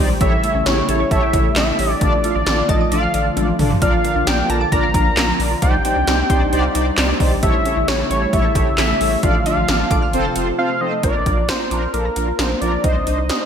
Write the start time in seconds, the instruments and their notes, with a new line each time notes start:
Already playing: analog synth pad A#2 G3 C4 D#4, downlifter
0.00 sub bass C2
0.09 synth pluck G3
0.20 sub bass A1, analog synth pad C#3 G3 A3 E4, synth pluck E3, analog polysynth E4 G4 A4 C#5, analog synth lead E5, kick, closed hi-hat
0.32 synth pluck G3
0.43 synth pluck A3, analog polysynth E4 G4 A4 C#5, closed hi-hat
0.55 sub bass A1, synth pluck C#4
0.66 sub bass A1, synth pluck E4, analog polysynth E4 G4 A4 C#5, analog synth lead C#5, snare, closed hi-hat
0.77 synth pluck G4
0.89 sub bass A1, analog polysynth E4 G4 A4 C#5, synth pluck A4, analog synth lead C#5, closed hi-hat
1.00 synth pluck C#5
1.11 sub bass A1, analog polysynth E4 G4 A4 C#5, synth pluck A4, analog synth lead E5, kick, closed hi-hat
1.23 synth pluck G4
1.33 sub bass A1, analog polysynth E4 G4 A4 C#5, synth pluck E4, kick, closed hi-hat
1.56 sub bass A1, synth pluck A3, analog polysynth E4 G4 A4 C#5, analog synth lead E5, snare, clap, closed hi-hat
1.68 synth pluck G3
1.79 sub bass A1, synth pluck E3, analog polysynth E4 G4 A4 C#5, open hi-hat
1.90 synth pluck G3, analog synth lead D5
2.01 sub bass A1, analog synth pad D3 F3 F4, synth pluck D3, analog polysynth D4 F4 A4 D5, analog synth lead D5, kick, closed hi-hat
2.13 synth pluck F3
2.24 synth pluck A3, analog polysynth D4 F4 A4 F5, closed hi-hat
2.35 sub bass A1, synth pluck D4, analog synth lead D5
2.46 sub bass A1, analog polysynth D4 F4 A4 D5, synth pluck D5, snare, closed hi-hat
2.58 synth pluck F5
2.69 sub bass A1, analog polysynth D4 F4 A4 D5, analog synth lead D#5, synth pluck A5, kick, closed hi-hat
2.80 synth pluck D6
2.92 sub bass A1, analog polysynth D4 F4 A4 D5, analog synth lead F5, synth pluck A5, closed hi-hat
3.03 synth pluck F5
3.14 sub bass A1, analog polysynth D4 F4 A4 D5, synth pluck D5, closed hi-hat
3.37 sub bass A1, synth pluck A3, analog polysynth D4 F4 A4 D5, closed hi-hat, high tom
3.48 synth pluck F3
3.59 sub bass A1, synth pluck D3, analog polysynth D4 F4 A4 D5, mid tom, open hi-hat
3.71 synth pluck F3, floor tom
3.82 sub bass A#1, synth pluck D3, analog synth pad F3 A#3, analog polysynth D4 F4 A#4 D5, analog synth lead F5, kick, closed hi-hat
3.93 synth pluck F3
4.04 synth pluck A#3, analog polysynth D4 F4 A#4 F5, closed hi-hat
4.16 sub bass A#1, synth pluck D4
4.27 sub bass A#1, analog polysynth D4 F4 A#4 D5, synth pluck D5, analog synth lead G5, snare, closed hi-hat
4.38 synth pluck F5
4.49 sub bass A#1, analog polysynth D4 F4 A#4 D5, analog synth lead A5, synth pluck A#5, closed hi-hat
4.61 synth pluck D6
4.72 sub bass A#1, analog polysynth D4 F4 A#4 D5, synth pluck A#5, analog synth lead A#5, kick, closed hi-hat
4.83 synth pluck F5
4.94 sub bass A#1, analog polysynth D4 F4 A#4 F5, synth pluck D5, kick, closed hi-hat
5.17 sub bass A#1, synth pluck A#3, analog polysynth D4 F4 A#4 F5, snare, clap, closed hi-hat
5.28 synth pluck F3
5.39 sub bass A#1, synth pluck D3, analog polysynth D4 F4 A#4 D5, open hi-hat
5.51 synth pluck F3
5.62 sub bass C2, synth pluck D#3, analog synth pad G3 C4 D4 D#4, analog polysynth D#4 G4 C5 D5, analog synth lead G5, kick, closed hi-hat
5.73 synth pluck G3
5.85 synth pluck C4, analog polysynth D#4 G4 C5 D5, closed hi-hat
5.96 sub bass C2, synth pluck D4
6.07 sub bass C2, synth pluck D#4, analog polysynth D#4 G4 C5 D5, snare, closed hi-hat
6.19 synth pluck G4
6.30 sub bass C2, analog polysynth D#4 G4 C5 D5, synth pluck C5, kick, closed hi-hat
6.41 synth pluck D5
6.52 sub bass C2, analog polysynth D#4 G4 C5 D5, synth pluck C5, closed hi-hat
6.64 synth pluck G4, analog synth lead F5
6.75 sub bass C2, analog polysynth D#4 G4 C5 D5, synth pluck D#4, closed hi-hat
6.98 sub bass C2, synth pluck C4, analog polysynth D#4 G4 C5 D5, snare, clap, closed hi-hat
7.09 synth pluck G3
7.20 sub bass C2, synth pluck D#3, analog polysynth D#4 G4 C5 D5, kick, open hi-hat
7.32 synth pluck G3
7.43 sub bass A1, analog synth pad C#3 G3 A3 E4, synth pluck G3, analog polysynth E4 G4 A4 C#5, analog synth lead E5, kick, closed hi-hat
7.54 synth pluck A3
7.65 synth pluck C#4, analog polysynth E4 G4 A4 C#5, closed hi-hat
7.77 sub bass A1, synth pluck E4
7.88 sub bass A1, analog polysynth E4 G4 A4 C#5, synth pluck G4, analog synth lead C#5, snare, closed hi-hat
7.99 synth pluck A4
8.10 sub bass A1, analog polysynth E4 G4 A4 C#5, synth pluck C#5, analog synth lead C#5, closed hi-hat
8.22 synth pluck E5
8.33 sub bass A1, analog polysynth E4 G4 A4 C#5, synth pluck C#5, analog synth lead E5, kick, closed hi-hat
8.44 synth pluck A4
8.55 sub bass A1, analog polysynth E4 G4 A4 C#5, synth pluck G4, kick, closed hi-hat
8.78 sub bass A1, synth pluck C#4, analog polysynth E4 G4 A4 C#5, analog synth lead E5, snare, clap, closed hi-hat
8.89 synth pluck A3
9.01 sub bass A1, synth pluck G3, analog polysynth E4 G4 A4 C#5, open hi-hat
9.12 synth pluck A3
9.23 sub bass A1, analog synth pad D3 F3 F4, synth pluck F3, analog polysynth D4 F4 A4 D5, analog synth lead F5, kick, closed hi-hat
9.34 synth pluck A3
9.46 analog polysynth D4 F4 A4 D5, synth pluck D4, analog synth lead F5, closed hi-hat
9.57 sub bass A1, synth pluck F4
9.68 sub bass A1, analog polysynth D4 F4 A4 D5, synth pluck F5, snare, closed hi-hat
9.80 synth pluck A5
9.91 sub bass A1, analog polysynth D4 F4 A4 D5, synth pluck D6, kick, closed hi-hat
10.02 synth pluck F6
10.13 sub bass F1, analog synth pad C3, analog polysynth C4 F4 A4 C5, synth pluck C6, closed hi-hat
10.25 synth pluck A5
10.36 sub bass F1, analog polysynth C4 F4 A4 C5, synth pluck F5, closed hi-hat
10.58 synth pluck C4, analog polysynth C4 F4 A4 C5, analog synth lead F5
10.70 synth pluck A3
10.81 synth pluck F3, analog polysynth C4 F4 A4 C5, analog synth lead D#5
10.92 synth pluck A3
11.03 sub bass A#1, synth pluck F3, analog polysynth D4 F4 A#4, analog synth lead D5, kick, closed hi-hat
11.15 synth pluck A#3
11.26 sub bass A#1, synth pluck D4, analog polysynth D4 F4 A#4, kick, closed hi-hat
11.37 synth pluck F4
11.48 analog polysynth D4 F4 C5, analog synth lead C5, synth pluck F5, snare, closed hi-hat
11.60 synth pluck A#5
11.71 sub bass A#1, analog polysynth D4 F4 A#4, synth pluck D6, closed hi-hat
11.82 synth pluck F6
11.93 sub bass A#1, analog polysynth D4 F4 A4, analog synth lead A#4, synth pluck D6, closed hi-hat
12.05 synth pluck A#5
12.16 sub bass A#1, analog polysynth D4 F4 A#4, synth pluck F5, closed hi-hat
12.28 synth pluck F4
12.39 sub bass A#1, analog polysynth D4 F4 A#4, synth pluck D4, analog synth lead C5, snare, closed hi-hat
12.50 synth pluck A#3
12.61 sub bass A#1, synth pluck F3, analog polysynth D4 F4 A#4, analog synth lead D5, closed hi-hat
12.73 synth pluck A#3
12.84 sub bass C2, synth pluck G3, analog polysynth D4 D#4 C5, analog synth lead D#5, kick, closed hi-hat
12.96 synth pluck C4
13.06 sub bass C2, analog polysynth D4 D#4 C5, synth pluck D4, closed hi-hat
13.18 synth pluck D#4
13.29 analog polysynth D4 D#4 C5, synth pluck G4, snare, closed hi-hat
13.41 synth pluck C5